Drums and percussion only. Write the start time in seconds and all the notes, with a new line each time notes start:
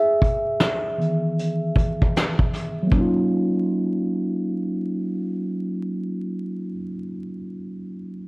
0.22 kick, closed hi-hat
0.60 snare, closed hi-hat
1.01 closed hi-hat
1.39 closed hi-hat
1.75 kick, closed hi-hat
2.02 kick
2.16 snare, closed hi-hat
2.39 kick
2.54 snare, closed hi-hat
2.92 kick